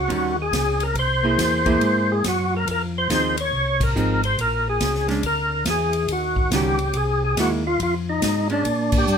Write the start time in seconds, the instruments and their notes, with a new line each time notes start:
0.00 tonewheel organ F#4
0.08 tonewheel organ D#2, hollow-body jazz guitar D#3 G3 C#4 F#4, kick, ride
0.42 tonewheel organ G#4
0.52 tonewheel organ C#2, kick, snare, hi-hat pedal, ride
0.80 tonewheel organ A#4, ride
0.95 tonewheel organ C2, kick, ride
0.99 tonewheel organ C5
1.23 hollow-body jazz guitar A#3 E4 G#4
1.38 tonewheel organ E2, kick, snare, hi-hat pedal, ride
1.65 hollow-body jazz guitar A#3 E4 G#4, kick, ride
1.81 tonewheel organ G#2, kick, ride
2.12 tonewheel organ G#4
2.24 tonewheel organ F#2, kick, snare, hi-hat pedal, ride
2.28 tonewheel organ F#4
2.57 tonewheel organ A#4
2.66 tonewheel organ F2, kick, ride
2.71 tonewheel organ A#4
2.98 tonewheel organ C5
3.09 tonewheel organ D#2, hollow-body jazz guitar F3 C4 D#4 G#4, kick, snare, hi-hat pedal, ride
3.37 tonewheel organ C#5, ride
3.53 tonewheel organ C2, kick
3.80 tonewheel organ A#4, kick, crash
3.95 tonewheel organ G#1, hollow-body jazz guitar F3 C4 D#4 G#4, hi-hat pedal
4.23 tonewheel organ C5, ride
4.38 tonewheel organ A#1 A#4, kick, ride
4.69 tonewheel organ G#4
4.80 tonewheel organ C#2, kick, snare, hi-hat pedal, ride
4.95 snare
5.08 hollow-body jazz guitar G#3 C#4 D4, snare, ride
5.23 tonewheel organ D2 A#4, kick, ride
5.65 tonewheel organ E2, kick, snare, hi-hat pedal, ride
5.70 tonewheel organ G#4
5.93 ride
6.08 tonewheel organ D#2, kick, ride
6.12 tonewheel organ F#4
6.36 kick
6.51 tonewheel organ C#2, hollow-body jazz guitar D#3 G3 C#4 F#4, kick, snare, hi-hat pedal, ride
6.56 tonewheel organ G4
6.79 ride
6.93 tonewheel organ C2 G#4, kick, ride
7.25 tonewheel organ G#4
7.37 tonewheel organ D#2 F#4, hollow-body jazz guitar G#3 A#3 E4, kick, snare, hi-hat pedal, ride
7.67 tonewheel organ F4
7.80 tonewheel organ F2 F4, kick, ride
8.09 tonewheel organ D#4
8.22 tonewheel organ G#2, kick, snare, hi-hat pedal, ride
8.50 hollow-body jazz guitar G#3 C#4 D4, tonewheel organ D4, ride
8.65 tonewheel organ A#2, kick, ride
8.92 kick, crash
8.98 tonewheel organ G4
9.07 tonewheel organ G2, hi-hat pedal